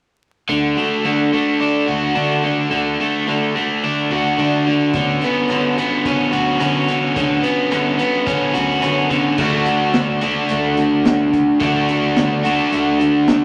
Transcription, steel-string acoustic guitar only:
0.48 0.76 D3 medium
0.48 0.76 A3 medium
0.48 0.77 D4 medium
0.48 0.75 F#4 medium
0.77 1.03 A3 soft
0.77 1.04 D4 soft
0.77 1.04 F#4 soft
1.04 1.32 D3 medium
1.04 1.32 A3 medium
1.04 1.32 D4 medium
1.04 1.31 F#4 medium
1.32 1.59 A3 soft
1.32 1.59 D4 soft
1.32 1.60 F#4 soft
1.59 1.87 D3 medium
1.59 1.87 A3 medium
1.59 1.86 D4 medium
1.59 1.84 F#4 medium
1.85 2.14 A3 soft
1.85 2.15 D4 soft
1.85 2.14 F#4 soft
2.15 2.43 D3 medium
2.15 2.43 A3 medium
2.15 2.43 D4 medium
2.15 2.42 F#4 medium
2.43 2.69 A3 soft
2.43 2.70 D4 soft
2.43 2.71 F#4 soft
2.70 2.99 D3 medium
2.70 2.99 A3 medium
2.70 2.99 D4 medium
2.70 2.97 F#4 medium
2.98 3.26 A3 soft
2.98 3.27 D4 soft
2.98 3.26 F#4 soft
3.27 3.55 D3 medium
3.27 3.55 A3 medium
3.27 3.54 D4 medium
3.27 3.53 F#4 medium
3.54 3.82 A3 soft
3.54 3.83 D4 soft
3.54 3.82 F#4 soft
3.83 4.11 D3 medium
3.83 4.11 A3 medium
3.83 4.11 D4 medium
3.83 4.10 F#4 medium
4.11 4.38 A3 soft
4.11 4.39 D4 soft
4.11 4.38 F#4 medium
4.39 4.66 D3 medium
4.39 4.66 A3 medium
4.39 4.67 D4 medium
4.39 4.66 F#4 medium
4.67 4.94 A3 soft
4.67 4.94 D4 soft
4.67 4.94 F#4 soft
4.94 5.21 D3 medium
4.94 5.22 B3 medium
4.94 5.21 C#4 medium
4.94 5.20 F#4 medium
5.22 5.47 B3 soft
5.22 5.47 C#4 soft
5.22 5.48 F#4 soft
5.48 5.76 D3 medium
5.48 5.77 B3 medium
5.48 5.77 C#4 medium
5.48 5.76 F#4 medium
5.77 6.04 B3 soft
5.77 6.05 C#4 soft
5.77 6.05 F#4 soft
6.05 6.33 D3 medium
6.05 6.32 B3 medium
6.05 6.31 C#4 medium
6.05 6.30 F#4 medium
6.31 6.60 B3 soft
6.31 6.60 C#4 soft
6.31 6.60 F#4 soft
6.60 6.88 D3 medium
6.60 6.89 B3 medium
6.60 6.88 C#4 medium
6.60 6.87 F#4 medium
6.88 7.15 B3 soft
6.88 7.16 C#4 soft
6.88 7.16 F#4 soft
7.16 7.44 D3 medium
7.16 7.44 B3 medium
7.16 7.44 C#4 medium
7.16 7.43 F#4 medium
7.45 7.72 B3 soft
7.45 7.72 C#4 soft
7.45 7.72 F#4 soft
7.72 8.00 D3 medium
7.72 8.00 B3 medium
7.72 8.00 C#4 medium
7.72 7.99 F#4 medium
8.00 8.27 B3 soft
8.00 8.28 C#4 soft
8.00 8.28 F#4 soft
8.28 8.56 D3 medium
8.28 8.56 B3 medium
8.28 8.56 C#4 medium
8.28 8.55 F#4 medium
8.56 8.83 B3 soft
8.56 8.83 C#4 medium
8.56 8.83 F#4 medium
8.83 9.11 D3 medium
8.83 9.11 B3 medium
8.83 9.10 C#4 medium
8.83 9.09 F#4 medium
9.10 9.37 B3 soft
9.10 9.38 C#4 soft
9.10 9.38 F#4 soft
9.37 9.66 D3 medium
9.37 9.66 A3 medium
9.37 9.65 D4 medium
9.37 9.64 F#4 medium
9.65 9.94 A3 soft
9.65 9.94 D4 soft
9.65 9.94 F#4 soft
9.94 10.22 D3 medium
9.94 10.22 A3 medium
9.94 10.23 D4 medium
9.94 10.21 F#4 medium
10.22 10.49 A3 soft
10.22 10.50 D4 soft
10.22 10.50 F#4 soft
10.49 10.77 D3 medium
10.49 10.78 A3 medium
10.49 10.77 D4 medium
10.49 10.76 F#4 medium
10.78 11.04 A3 soft
10.78 11.05 D4 medium
10.78 11.05 F#4 medium
11.05 11.33 D3 medium
11.05 11.32 A3 medium
11.05 11.31 D4 medium
11.05 11.29 F#4 medium
11.30 11.60 A3 soft
11.30 11.60 D4 soft
11.30 11.60 F#4 soft
11.60 11.89 D3 medium
11.60 11.89 A3 medium
11.60 11.89 D4 medium
11.60 11.88 F#4 medium
11.89 12.16 A3 soft
11.89 12.16 D4 soft
11.89 12.17 F#4 medium
12.16 12.44 D3 medium
12.16 12.45 A3 medium
12.16 12.44 D4 medium
12.16 12.43 F#4 medium
12.44 12.70 A3 soft
12.44 12.70 D4 medium
12.44 12.71 F#4 medium
12.71 12.99 D3 medium
12.71 13.00 A3 medium
12.71 12.98 D4 medium
12.71 12.98 F#4 medium
12.99 13.26 A3 soft
12.99 13.26 D4 medium
12.99 13.28 F#4 medium
13.27 13.45 D3 medium
13.27 13.45 A3 medium
13.27 13.45 D4 medium
13.27 13.45 F#4 medium

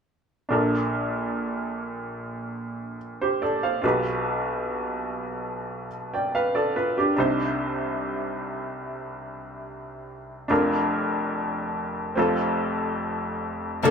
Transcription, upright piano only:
0.49 3.80 A#1 soft
0.49 3.80 A#2 soft
0.49 3.79 D4 soft
0.49 2.96 A4 soft
0.49 2.97 A#4 soft
3.21 3.42 G4 soft
3.21 3.41 C5 soft
3.42 3.62 A4 soft
3.42 3.62 D5 soft
3.63 4.03 C5 soft
3.63 4.03 F5 soft
3.82 7.13 B1 soft
3.82 7.13 B2 soft
3.82 5.87 F4 soft
3.82 5.88 G4 soft
3.82 5.89 B4 soft
6.14 6.33 D5 soft
6.14 6.33 G5 soft
6.35 6.54 B4 soft
6.35 6.54 F5 soft
6.55 6.75 A4 soft
6.55 6.75 D5 soft
6.76 6.96 F4 soft
6.76 6.96 B4 soft
6.98 7.15 D4 soft
6.98 7.37 G4 soft
7.16 10.47 C2 soft
7.16 10.47 C3 soft
7.16 10.46 D4 soft
7.16 10.47 D#4 soft
7.16 10.48 C5 medium
10.48 12.13 F1 soft
10.48 12.13 F2 soft
10.48 12.13 D4 soft
10.48 12.14 F4 soft
10.48 12.14 A#4 soft
12.15 13.80 F1 soft
12.15 13.80 F2 soft
12.15 13.80 C4 soft
12.15 13.80 F4 soft
12.15 13.81 A4 medium
13.83 13.90 A#2 soft
13.83 13.90 A#3 medium
13.83 13.90 D4 medium
13.83 13.90 A4 medium

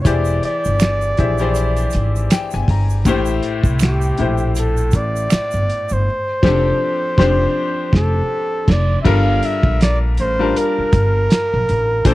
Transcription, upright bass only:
0.06 0.38 E1 medium
0.66 1.12 G1 medium
1.20 1.85 A#1 medium
1.95 2.27 G#1 medium
2.54 2.67 G1 medium
2.69 3.06 G1 medium
3.06 3.39 A1 loud
3.64 4.11 C2 medium
4.20 4.94 A#1 medium
4.94 5.26 A1 medium
5.33 muted upright bass stroke soft
5.54 5.67 G1 medium
5.91 6.06 G1 medium
6.44 6.70 F1 medium
7.19 7.45 F1 medium
7.94 8.20 F1 loud
8.69 8.95 F1 loud
9.06 9.39 G1 loud
9.64 10.19 A#1 medium
10.19 10.51 A1 medium
10.78 muted upright bass stroke soft
10.94 11.26 G1 medium
11.54 11.67 A#1 medium
11.70 12.02 A1 medium
12.06 12.14 A#1 loud

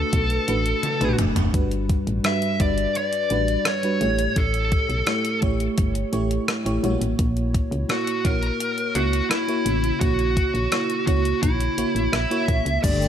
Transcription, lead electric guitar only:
0.00 1.15 A4 medium
2.26 2.58 E5 medium
2.62 2.96 D5 medium
2.97 3.67 D5 medium
3.68 4.39 C#5 medium
4.38 5.39 A4 medium
7.90 8.26 F#4 medium
8.25 8.98 A#4 loud
8.95 9.28 F#4 medium
9.30 10.00 E4 medium
10.00 11.06 F#4 medium
11.07 11.42 F#4 medium
11.43 12.44 E4 medium
12.13 12.79 E5 medium
12.84 13.08 D5 medium

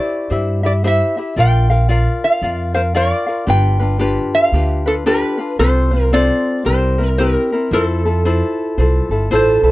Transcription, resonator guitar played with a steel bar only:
0.00 0.65 D5 medium
0.66 0.71 D5 medium
0.87 1.39 E5 medium
1.40 1.88 G5 medium
2.24 2.72 F5 medium
2.74 2.80 C5 medium
2.97 3.50 D5 medium
3.50 3.98 G5 medium
4.35 4.89 F5 medium
4.87 4.93 A4 medium
5.07 5.56 B4 medium
5.59 6.13 C5 medium
6.14 6.66 D5 medium
6.66 7.09 C5 medium
7.09 7.18 A#4 medium
7.18 7.73 A#4 medium
7.73 9.28 A4 medium
9.35 9.71 C5 medium

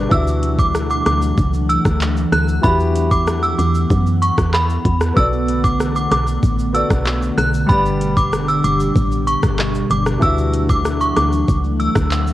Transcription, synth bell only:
0.12 0.26 E6 medium
0.59 0.73 D6 medium
0.91 1.05 D6 medium
1.06 1.20 D6 medium
1.69 1.83 E6 medium
2.32 2.47 F#6 medium
2.63 2.78 B5 loud
3.11 3.25 D6 medium
3.43 3.57 E6 medium
3.59 3.73 D6 medium
4.22 4.36 C#6 medium
4.53 4.98 B5 medium
5.17 5.31 E6 loud
5.64 5.78 D6 medium
5.96 6.10 D6 medium
6.11 6.26 D6 medium
6.74 6.89 E6 medium
7.38 7.52 F#6 medium
7.69 7.83 B5 loud
8.17 8.31 D6 medium
8.48 8.62 E6 medium
8.64 8.78 D6 medium
9.27 9.41 C#6 medium
9.91 10.05 D6 medium
10.22 10.36 E6 loud
10.70 10.84 D6 medium
11.01 11.15 C#6 medium
11.16 11.31 D6 medium
11.80 11.94 E6 medium

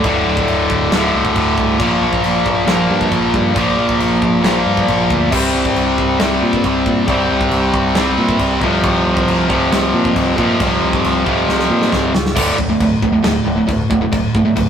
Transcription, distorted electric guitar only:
0.03 0.90 D2 medium
0.03 0.91 A2 medium
0.03 0.92 D3 loud
0.91 1.78 D2 medium
0.91 1.79 A2 medium
0.91 1.80 D3 medium
1.79 2.65 A#2 medium
1.79 2.67 F3 medium
1.79 2.68 A#3 loud
2.65 3.53 A#2 medium
2.65 3.54 F3 medium
2.65 3.55 A#3 loud
3.54 4.41 A#2 loud
3.54 4.42 F3 loud
3.54 4.43 A#3 loud
4.42 5.29 A#2 medium
4.42 5.31 F3 medium
4.46 5.32 A#3 loud
5.31 6.19 C3 loud
5.31 6.19 G3 medium
5.31 6.22 C4 loud
6.19 7.06 C3 medium
6.19 7.07 G3 medium
6.19 7.10 C4 medium
7.07 7.94 C3 loud
7.07 7.95 G3 medium
7.07 7.98 C4 loud
7.95 8.60 C3 medium
7.95 8.61 G3 medium
7.95 8.64 C4 medium
8.61 9.48 F2 medium
8.61 9.50 C3 loud
8.61 9.48 F3 loud
9.49 10.35 F2 medium
9.49 10.36 C3 medium
9.49 10.39 F3 medium
10.36 11.24 F2 medium
10.36 11.25 C3 medium
10.36 11.23 F3 loud
11.24 12.14 F2 medium
11.24 12.13 C3 medium
11.24 12.12 F3 medium
12.35 12.56 D2 medium
12.35 12.57 A2 loud
12.35 12.57 D3 medium
12.58 12.69 D2 medium
12.58 12.68 A2 loud
12.69 12.79 D2 medium
12.69 12.80 A2 medium
12.80 13.00 D2 medium
12.80 13.00 A2 medium
13.02 13.12 D2 medium
13.02 13.12 A2 medium
13.13 13.22 D2 medium
13.13 13.22 A2 medium
13.23 13.44 D2 medium
13.23 13.44 A2 medium
13.46 13.56 D2 medium
13.46 13.56 A2 medium
13.57 13.66 D2 medium
13.57 13.67 A2 medium
13.68 13.88 D2 medium
13.68 13.88 A2 loud
13.90 14.01 D2 medium
13.90 14.00 A2 medium
14.01 14.10 D2 medium
14.01 14.11 A2 medium
14.12 14.32 D2 medium
14.12 14.32 A2 medium
14.35 14.44 D2 medium
14.35 14.44 A2 medium
14.45 14.54 D2 medium
14.45 14.55 A2 medium
14.56 14.69 D2 medium
14.56 14.69 A2 loud

